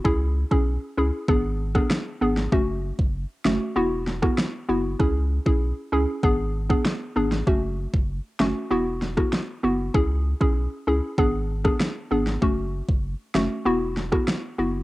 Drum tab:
SD |-----------ro--o|------o---oro---|------------o--o|------o---oro---|
BD |o--o----o--o----|o--o-------o----|o--o----o--o----|o--o-------o----|

SD |-----------ro--o|------o---oro---|
BD |o--o----o--o----|o--o-------o----|